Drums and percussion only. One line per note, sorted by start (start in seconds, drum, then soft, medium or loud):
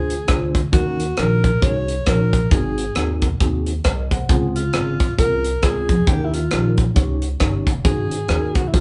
0.10 closed hi-hat medium
0.28 kick medium
0.28 cross-stick medium
0.28 closed hi-hat medium
0.55 kick medium
0.55 cross-stick soft
0.55 closed hi-hat medium
0.73 kick loud
0.73 closed hi-hat medium
1.00 closed hi-hat medium
1.17 cross-stick medium
1.17 closed hi-hat medium
1.44 kick medium
1.44 closed hi-hat medium
1.62 kick medium
1.62 closed hi-hat medium
1.88 closed hi-hat medium
2.06 kick medium
2.06 cross-stick medium
2.06 closed hi-hat medium
2.33 kick medium
2.33 closed hi-hat medium
2.51 kick loud
2.51 closed hi-hat medium
2.78 closed hi-hat medium
2.95 cross-stick medium
2.95 closed hi-hat medium
3.22 kick medium
3.22 closed hi-hat medium
3.40 kick medium
3.40 closed hi-hat medium
3.66 closed hi-hat medium
3.84 kick medium
3.84 cross-stick medium
3.84 closed hi-hat medium
4.11 kick medium
4.11 cross-stick soft
4.11 closed hi-hat medium
4.29 kick loud
4.29 closed hi-hat medium
4.56 closed hi-hat medium
4.73 cross-stick medium
4.73 closed hi-hat medium
5.00 kick medium
5.00 closed hi-hat medium
5.18 kick medium
5.18 closed hi-hat medium
5.44 closed hi-hat medium
5.63 kick medium
5.63 cross-stick medium
5.63 closed hi-hat medium
5.89 kick medium
5.89 closed hi-hat medium
6.07 kick loud
6.07 closed hi-hat medium
6.34 closed hi-hat medium
6.51 cross-stick loud
6.51 closed hi-hat medium
6.78 kick medium
6.78 closed hi-hat medium
6.96 kick medium
6.96 closed hi-hat medium
7.22 closed hi-hat medium
7.40 kick medium
7.40 cross-stick medium
7.40 closed hi-hat medium
7.67 kick medium
7.67 closed hi-hat medium
7.85 kick loud
7.85 closed hi-hat medium
8.11 closed hi-hat medium
8.28 cross-stick medium
8.28 closed hi-hat medium
8.55 kick medium
8.55 closed hi-hat medium
8.74 kick medium
8.74 closed hi-hat medium